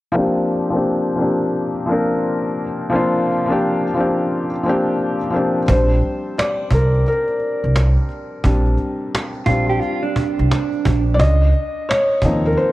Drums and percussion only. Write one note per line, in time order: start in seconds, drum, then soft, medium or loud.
5.68 cajon bass loud
5.90 cajon slap soft
6.01 cajon slap soft
6.39 cajon slap loud
6.58 cajon slap soft
6.71 cajon bass medium
6.94 cajon slap soft
7.06 cajon slap soft
7.28 cajon slap soft
7.40 cajon slap soft
7.76 cajon slap medium
7.97 cajon slap soft
8.09 cajon slap soft
8.44 cajon bass loud
8.66 cajon slap soft
8.77 cajon slap soft
9.15 cajon slap loud
9.33 cajon slap soft
9.46 cajon bass medium
9.69 cajon slap soft
9.82 cajon slap soft
10.03 cajon slap soft
10.16 cajon bass medium
10.51 cajon slap medium
10.73 cajon slap soft
10.85 cajon bass medium
11.20 cajon bass loud
11.41 cajon slap soft
11.53 cajon slap soft
11.91 cajon slap loud
12.09 cajon slap soft
12.22 cajon bass medium
12.46 cajon slap soft
12.57 cajon slap soft